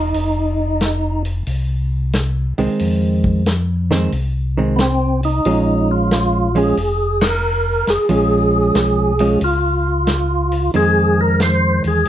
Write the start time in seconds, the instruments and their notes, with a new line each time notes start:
Already playing: tonewheel organ E1 D#4
0.14 tonewheel organ F1, open hi-hat
0.81 snare, closed hi-hat
1.25 open hi-hat
1.47 tonewheel organ C2, open hi-hat
2.13 snare, closed hi-hat
2.58 tonewheel organ C2, hollow-body jazz guitar D#3 G#3 C4, open hi-hat
2.79 tonewheel organ F2, open hi-hat
3.24 kick
3.46 snare, closed hi-hat
3.91 hollow-body jazz guitar D#3 G#3 C4, snare
4.12 tonewheel organ C2, open hi-hat
4.57 hollow-body jazz guitar D#3 G#3 C4
4.76 tonewheel organ B3, snare, closed hi-hat
4.81 tonewheel organ C4
5.23 tonewheel organ D#4, open hi-hat
5.45 tonewheel organ A#1, hollow-body jazz guitar F3 G#3 C#4, open hi-hat
5.91 tonewheel organ F4
6.11 snare, closed hi-hat
6.55 hollow-body jazz guitar F3 G#3 C#4, tonewheel organ G#4, open hi-hat
6.77 tonewheel organ F1, open hi-hat
7.21 tonewheel organ A#4, snare, ride
7.87 tonewheel organ F1 G#4, snare, open hi-hat
8.09 tonewheel organ A#1, hollow-body jazz guitar F3 G#3 C#4, open hi-hat
8.75 tonewheel organ B1, snare, closed hi-hat
9.19 hollow-body jazz guitar F3 G#3 C#4, open hi-hat
9.41 tonewheel organ C#2 F4, open hi-hat
10.07 snare, closed hi-hat
10.52 open hi-hat
10.74 tonewheel organ F2 G#4, hollow-body jazz guitar D#3 G#3 C4, open hi-hat
11.21 tonewheel organ A#4
11.40 tonewheel organ C5, snare, closed hi-hat
11.84 tonewheel organ E2 G#4, open hi-hat
12.05 open hi-hat